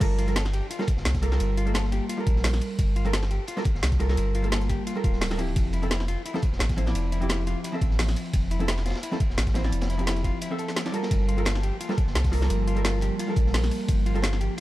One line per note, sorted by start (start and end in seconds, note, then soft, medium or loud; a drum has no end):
0.00 0.61 G1 loud
0.00 0.24 G3 loud
0.00 0.24 F4 loud
0.00 0.24 A4 medium
0.00 0.25 A#4 loud
0.00 kick loud
0.00 closed hi-hat loud
0.00 crash loud
0.00 ride medium
0.18 0.34 F4 medium
0.18 closed hi-hat medium
0.18 ride medium
0.27 0.34 G3 medium
0.27 0.35 F4 medium
0.27 0.35 A4 medium
0.27 0.35 A#4 medium
0.27 closed hi-hat soft
0.27 ride soft
0.36 0.46 A4 medium
0.36 snare loud
0.36 closed hi-hat loud
0.36 ride loud
0.45 snare medium
0.53 0.69 G4 medium
0.53 closed hi-hat medium
0.53 ride medium
0.71 0.81 F4 medium
0.71 closed hi-hat loud
0.71 ride medium
0.79 0.84 G3 loud
0.79 0.84 F4 medium
0.79 0.84 A4 medium
0.79 0.85 A#4 loud
0.79 snare medium
0.87 kick loud
0.87 closed hi-hat medium
0.87 ride medium
0.97 1.05 G1 loud
0.97 snare soft
1.05 1.39 C2 medium
1.05 snare loud
1.05 closed hi-hat loud
1.05 ride medium
1.15 kick medium
1.15 snare medium
1.15 closed hi-hat soft
1.22 1.29 G3 medium
1.22 1.30 F4 medium
1.22 1.30 A4 medium
1.22 1.30 A#4 loud
1.22 closed hi-hat medium
1.22 ride medium
1.31 1.64 G3 medium
1.31 1.64 F4 medium
1.31 1.65 A4 medium
1.31 1.65 A#4 medium
1.31 snare medium
1.40 2.00 G1 loud
1.40 closed hi-hat medium
1.40 ride medium
1.57 1.73 F4 medium
1.57 closed hi-hat medium
1.57 ride medium
1.65 2.16 G3 medium
1.65 2.17 A#3 medium
1.65 2.16 F4 medium
1.65 2.17 A4 medium
1.65 closed hi-hat soft
1.74 1.85 A4 medium
1.74 snare loud
1.74 closed hi-hat loud
1.74 ride loud
1.84 snare soft
1.92 2.08 G4 medium
1.92 snare soft
1.92 closed hi-hat medium
1.92 ride medium
2.09 2.19 F4 medium
2.09 closed hi-hat loud
2.09 ride medium
2.17 3.02 G3 medium
2.17 3.03 F4 medium
2.17 3.03 A4 medium
2.17 3.04 A#4 medium
2.27 2.60 A#1 loud
2.27 kick loud
2.27 closed hi-hat medium
2.27 ride medium
2.36 snare soft
2.44 snare loud
2.44 closed hi-hat loud
2.44 open hi-hat medium
2.53 snare soft
2.53 snare medium
2.53 closed hi-hat soft
2.61 closed hi-hat medium
2.61 ride medium
2.70 ride soft
2.79 3.39 G1 loud
2.79 kick loud
2.79 closed hi-hat medium
2.79 ride medium
2.96 3.12 F4 medium
2.96 closed hi-hat medium
2.96 ride medium
3.04 3.12 G3 medium
3.04 3.12 F4 medium
3.04 3.13 A4 medium
3.04 3.13 A#4 medium
3.04 closed hi-hat soft
3.04 ride soft
3.13 3.23 A4 medium
3.13 snare loud
3.13 closed hi-hat medium
3.13 ride medium
3.22 snare medium
3.31 3.47 G4 medium
3.31 closed hi-hat medium
3.31 ride medium
3.47 3.58 F4 medium
3.47 closed hi-hat loud
3.47 ride medium
3.57 3.62 G3 loud
3.57 3.62 F4 medium
3.57 3.62 A4 medium
3.57 3.62 A#4 loud
3.57 snare medium
3.64 kick loud
3.64 closed hi-hat medium
3.64 ride medium
3.75 3.82 G1 loud
3.75 snare soft
3.83 4.16 C2 medium
3.83 snare loud
3.83 closed hi-hat medium
3.83 ride medium
3.92 kick medium
3.92 snare medium
3.92 closed hi-hat soft
3.99 4.07 G3 medium
3.99 4.07 F4 medium
3.99 4.07 A4 medium
3.99 4.08 A#4 loud
3.99 closed hi-hat medium
3.99 ride medium
4.08 4.41 G3 medium
4.08 4.42 F4 medium
4.08 4.42 A4 medium
4.08 4.42 A#4 medium
4.08 snare medium
4.08 snare soft
4.17 4.77 G1 loud
4.17 closed hi-hat medium
4.17 ride medium
4.35 4.51 F4 medium
4.35 closed hi-hat medium
4.35 ride medium
4.42 4.93 G3 medium
4.42 4.95 A#3 medium
4.42 4.94 F4 medium
4.42 4.94 A4 medium
4.42 closed hi-hat soft
4.52 4.62 A4 medium
4.52 snare loud
4.52 closed hi-hat medium
4.52 ride medium
4.61 snare soft
4.61 closed hi-hat soft
4.69 4.85 G4 medium
4.69 kick medium
4.69 snare soft
4.69 closed hi-hat medium
4.69 ride medium
4.87 4.97 F4 medium
4.87 closed hi-hat loud
4.87 ride medium
4.95 5.28 G3 medium
4.95 5.29 F4 medium
4.95 5.29 A4 medium
4.95 5.29 A#4 medium
5.04 5.55 D1 medium
5.04 5.20 F4 medium
5.04 kick loud
5.04 closed hi-hat medium
5.04 ride medium
5.13 snare soft
5.21 snare loud
5.21 closed hi-hat medium
5.21 open hi-hat medium
5.30 5.37 G3 medium
5.30 5.37 F4 medium
5.30 5.37 A4 medium
5.30 5.37 A#4 medium
5.30 snare medium
5.30 closed hi-hat soft
5.37 5.80 F3 loud
5.37 5.80 C4 medium
5.37 5.81 E4 medium
5.37 5.81 G4 loud
5.37 closed hi-hat medium
5.37 ride medium
5.48 ride soft
5.56 6.16 F1 loud
5.56 kick loud
5.56 closed hi-hat medium
5.56 ride medium
5.73 5.89 E4 medium
5.73 closed hi-hat medium
5.73 ride medium
5.82 5.89 F3 medium
5.82 5.90 C4 medium
5.82 5.90 E4 medium
5.82 5.90 A4 medium
5.82 closed hi-hat soft
5.82 ride soft
5.91 6.07 E4 medium
5.91 snare loud
5.91 closed hi-hat medium
5.91 ride medium
6.00 snare medium
6.08 6.24 F4 medium
6.08 closed hi-hat medium
6.08 ride medium
6.26 6.36 E4 medium
6.26 closed hi-hat medium
6.26 ride medium
6.34 6.39 F3 loud
6.34 6.39 C4 medium
6.34 6.39 E4 medium
6.34 6.40 A4 loud
6.34 snare medium
6.42 kick loud
6.42 closed hi-hat medium
6.42 ride medium
6.52 6.59 F1 loud
6.52 snare soft
6.59 6.94 A1 medium
6.59 snare loud
6.59 closed hi-hat medium
6.59 ride medium
6.69 kick medium
6.69 snare medium
6.69 closed hi-hat soft
6.77 6.84 F3 medium
6.77 6.84 C4 medium
6.77 6.85 E4 medium
6.77 6.85 C5 loud
6.77 closed hi-hat medium
6.77 ride medium
6.86 7.19 F3 medium
6.86 7.19 C4 medium
6.86 7.19 E4 medium
6.86 7.20 D5 medium
6.86 snare medium
6.86 snare soft
6.95 7.55 F1 loud
6.95 closed hi-hat loud
6.95 ride loud
7.12 7.28 E4 medium
7.12 closed hi-hat medium
7.12 ride medium
7.20 7.71 F3 medium
7.20 7.71 C4 medium
7.20 7.72 E4 medium
7.20 7.72 G4 medium
7.20 closed hi-hat soft
7.29 7.45 E4 medium
7.29 snare loud
7.29 closed hi-hat loud
7.29 ride medium
7.39 snare soft
7.47 7.63 F4 medium
7.47 snare soft
7.47 closed hi-hat medium
7.47 ride medium
7.64 7.74 E4 medium
7.64 closed hi-hat loud
7.64 ride medium
7.72 8.57 F3 medium
7.72 8.58 C4 medium
7.72 8.59 A4 medium
7.72 8.58 E5 medium
7.81 8.15 A1 loud
7.81 kick loud
7.81 closed hi-hat medium
7.81 ride medium
7.91 snare soft
7.99 snare loud
7.99 closed hi-hat medium
7.99 open hi-hat medium
8.08 snare soft
8.08 snare medium
8.08 closed hi-hat soft
8.16 closed hi-hat medium
8.16 ride medium
8.25 ride soft
8.34 8.93 F1 loud
8.34 kick loud
8.34 closed hi-hat medium
8.34 ride loud
8.51 8.67 E4 medium
8.51 closed hi-hat medium
8.51 ride medium
8.59 8.67 F3 medium
8.59 8.67 C4 medium
8.59 8.68 E4 medium
8.59 8.68 A4 medium
8.59 closed hi-hat soft
8.59 ride soft
8.68 8.84 E4 medium
8.68 snare loud
8.68 closed hi-hat loud
8.68 ride loud
8.78 snare medium
8.85 9.01 F4 medium
8.85 snare medium
8.85 closed hi-hat medium
8.85 ride medium
8.90 snare loud
8.90 ride medium
8.95 snare loud
8.95 ride medium
9.03 9.13 E4 medium
9.03 closed hi-hat loud
9.03 ride medium
9.11 9.16 F3 medium
9.11 9.17 C4 medium
9.11 9.17 E4 medium
9.11 9.17 A4 loud
9.11 snare medium
9.20 kick loud
9.20 closed hi-hat medium
9.20 ride medium
9.30 9.37 F1 loud
9.30 snare soft
9.38 9.71 A1 medium
9.38 snare loud
9.38 closed hi-hat loud
9.38 ride medium
9.47 kick medium
9.47 snare medium
9.47 closed hi-hat soft
9.54 9.62 F3 medium
9.54 9.62 C4 medium
9.54 9.62 E4 medium
9.54 9.63 C5 loud
9.54 snare loud
9.54 closed hi-hat medium
9.54 ride medium
9.64 9.96 F3 medium
9.64 9.97 C4 medium
9.64 9.97 E4 medium
9.64 9.97 D5 medium
9.64 snare soft
9.72 10.32 F1 loud
9.72 closed hi-hat loud
9.72 ride medium
9.81 snare loud
9.81 closed hi-hat soft
9.81 ride medium
9.90 10.05 E4 medium
9.90 snare soft
9.90 closed hi-hat medium
9.97 10.48 F3 medium
9.97 10.49 C4 medium
9.97 10.49 E4 medium
9.97 10.50 G4 medium
9.97 closed hi-hat soft
9.97 ride medium
10.07 10.23 E4 medium
10.07 snare loud
10.07 closed hi-hat loud
10.07 ride medium
10.16 snare soft
10.16 closed hi-hat soft
10.24 10.40 F4 medium
10.24 kick medium
10.24 closed hi-hat medium
10.24 ride medium
10.41 10.52 E4 medium
10.41 closed hi-hat loud
10.41 ride medium
10.50 10.84 F3 medium
10.50 10.84 C4 medium
10.50 10.84 A4 medium
10.50 10.84 E5 medium
10.58 10.76 A4 medium
10.58 closed hi-hat medium
10.58 ride medium
10.68 snare soft
10.76 snare loud
10.76 closed hi-hat loud
10.76 ride medium
10.85 10.92 F3 medium
10.85 10.92 C4 medium
10.85 10.92 E4 medium
10.85 10.92 D5 medium
10.85 snare medium
10.85 closed hi-hat soft
10.92 11.35 G3 loud
10.92 11.35 F4 medium
10.92 11.10 A4 medium
10.92 11.36 A4 medium
10.92 11.36 A#4 loud
10.92 closed hi-hat medium
10.92 ride medium
11.03 snare medium
11.03 ride medium
11.11 11.71 G1 loud
11.11 14.60 F3 medium
11.11 14.60 A#3 medium
11.11 13.86 A5 medium
11.11 kick loud
11.11 closed hi-hat loud
11.11 ride medium
11.28 11.44 F4 medium
11.28 closed hi-hat medium
11.28 ride medium
11.37 11.44 G3 medium
11.37 11.45 F4 medium
11.37 11.45 A4 medium
11.37 11.45 A#4 medium
11.37 closed hi-hat soft
11.37 ride soft
11.45 11.62 F4 medium
11.45 snare loud
11.45 closed hi-hat loud
11.45 ride medium
11.55 snare medium
11.63 11.79 G4 medium
11.63 closed hi-hat medium
11.63 ride medium
11.80 11.90 F4 medium
11.80 closed hi-hat loud
11.80 ride medium
11.89 11.94 G3 loud
11.89 11.94 F4 medium
11.89 11.94 A4 medium
11.89 11.95 A#4 loud
11.89 snare medium
11.97 kick loud
11.97 closed hi-hat medium
11.97 ride medium
12.07 12.14 G1 loud
12.07 snare soft
12.15 12.49 C2 medium
12.15 snare loud
12.15 closed hi-hat loud
12.15 ride medium
12.24 kick medium
12.24 snare medium
12.24 closed hi-hat soft
12.32 12.39 G3 medium
12.32 12.39 F4 medium
12.32 12.40 A4 medium
12.32 12.40 A#4 medium
12.32 open hi-hat medium
12.32 ride medium
12.41 12.74 G3 medium
12.41 12.74 F4 medium
12.41 12.74 A4 medium
12.41 12.75 A#4 medium
12.41 snare medium
12.50 13.10 G1 loud
12.50 closed hi-hat medium
12.50 ride loud
12.67 12.83 F4 medium
12.67 closed hi-hat medium
12.67 ride medium
12.75 13.25 G3 medium
12.75 13.26 F4 medium
12.75 13.26 A4 medium
12.75 13.27 A#4 medium
12.75 closed hi-hat soft
12.85 13.00 F4 medium
12.85 snare loud
12.85 closed hi-hat loud
12.85 ride medium
12.94 snare medium
13.01 13.18 G4 medium
13.01 snare soft
13.01 closed hi-hat medium
13.01 ride medium
13.19 13.29 F4 medium
13.19 closed hi-hat loud
13.19 ride medium
13.27 14.12 G3 medium
13.27 14.13 F4 medium
13.27 14.13 A4 medium
13.27 14.14 A#4 medium
13.36 13.70 A#1 loud
13.36 kick loud
13.36 closed hi-hat medium
13.36 ride medium
13.46 snare soft
13.54 snare loud
13.54 closed hi-hat medium
13.54 open hi-hat medium
13.63 snare soft
13.63 snare medium
13.63 closed hi-hat soft
13.71 open hi-hat medium
13.71 ride medium
13.80 ride soft
13.88 14.48 G1 loud
13.88 14.60 G4 medium
13.88 kick loud
13.88 closed hi-hat medium
13.88 ride medium
14.06 14.22 F4 medium
14.06 closed hi-hat medium
14.06 ride medium
14.14 14.22 G3 medium
14.14 14.22 F4 medium
14.14 14.22 A4 medium
14.14 14.23 A#4 medium
14.14 closed hi-hat soft
14.14 ride soft
14.22 14.39 F4 medium
14.22 snare loud
14.22 closed hi-hat loud
14.22 ride medium
14.32 snare medium
14.41 14.56 G4 medium
14.41 closed hi-hat medium
14.41 ride medium